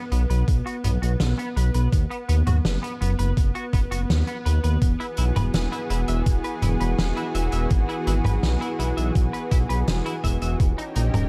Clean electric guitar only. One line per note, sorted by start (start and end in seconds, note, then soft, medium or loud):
0.12 0.21 B3 medium
0.30 0.43 B4 medium
0.66 0.75 F#4 medium
0.84 0.89 B3 medium
1.02 1.11 F#4 medium
1.38 1.47 B3 medium
1.56 1.70 B4 medium
1.74 1.88 B4 medium
2.10 2.16 B3 medium
2.29 2.34 B3 medium
2.47 2.56 F#4 loud
2.83 2.92 B3 loud
3.01 3.10 B3 medium
3.19 3.32 B4 medium
3.55 3.64 F#4 loud
3.73 3.79 B3 medium
3.91 4.00 F#4 loud
4.27 4.36 B3 medium
4.45 4.59 B4 medium
4.64 4.77 B4 medium
5.00 5.05 E4 medium
5.18 5.23 E4 medium
5.36 5.45 B4 medium
5.72 5.81 E4 loud
5.90 5.99 E4 medium
6.08 6.22 E5 medium
6.44 6.53 B4 loud
6.62 6.68 E4 medium
6.80 6.89 B4 medium
7.17 7.26 E4 medium
7.35 7.48 E5 medium
7.53 7.66 E5 medium
7.89 7.94 E4 medium
8.07 8.12 E4 medium
8.25 8.34 B4 loud
8.61 8.70 E4 medium
8.79 8.88 E4 medium
8.97 9.11 E5 medium
9.33 9.42 B4 medium
9.51 9.57 E4 medium
9.69 9.79 B4 medium
10.06 10.15 E4 medium
10.24 10.37 E5 medium
10.42 10.55 E5 medium
10.78 10.84 D#4 medium
10.96 11.02 D#4 medium
11.14 11.23 A#4 medium